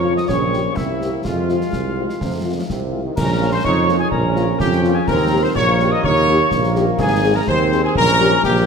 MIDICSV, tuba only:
0, 0, Header, 1, 2, 480
1, 0, Start_track
1, 0, Tempo, 480000
1, 285, Time_signature, 2, 2, 24, 8
1, 8662, End_track
2, 0, Start_track
2, 0, Title_t, "Tuba"
2, 0, Program_c, 0, 58
2, 0, Note_on_c, 0, 41, 68
2, 208, Note_off_c, 0, 41, 0
2, 298, Note_on_c, 0, 34, 79
2, 691, Note_off_c, 0, 34, 0
2, 772, Note_on_c, 0, 36, 60
2, 1168, Note_off_c, 0, 36, 0
2, 1247, Note_on_c, 0, 41, 67
2, 1645, Note_off_c, 0, 41, 0
2, 1722, Note_on_c, 0, 36, 62
2, 2094, Note_off_c, 0, 36, 0
2, 2214, Note_on_c, 0, 41, 55
2, 2609, Note_off_c, 0, 41, 0
2, 2688, Note_on_c, 0, 36, 62
2, 3085, Note_off_c, 0, 36, 0
2, 3170, Note_on_c, 0, 34, 84
2, 3566, Note_off_c, 0, 34, 0
2, 3642, Note_on_c, 0, 41, 85
2, 4042, Note_off_c, 0, 41, 0
2, 4123, Note_on_c, 0, 34, 85
2, 4522, Note_off_c, 0, 34, 0
2, 4603, Note_on_c, 0, 41, 90
2, 5002, Note_off_c, 0, 41, 0
2, 5078, Note_on_c, 0, 39, 84
2, 5480, Note_off_c, 0, 39, 0
2, 5553, Note_on_c, 0, 34, 89
2, 5957, Note_off_c, 0, 34, 0
2, 6039, Note_on_c, 0, 39, 88
2, 6440, Note_off_c, 0, 39, 0
2, 6514, Note_on_c, 0, 34, 93
2, 6918, Note_off_c, 0, 34, 0
2, 6993, Note_on_c, 0, 32, 95
2, 7397, Note_off_c, 0, 32, 0
2, 7476, Note_on_c, 0, 39, 88
2, 7878, Note_off_c, 0, 39, 0
2, 7960, Note_on_c, 0, 34, 91
2, 8361, Note_off_c, 0, 34, 0
2, 8444, Note_on_c, 0, 34, 94
2, 8662, Note_off_c, 0, 34, 0
2, 8662, End_track
0, 0, End_of_file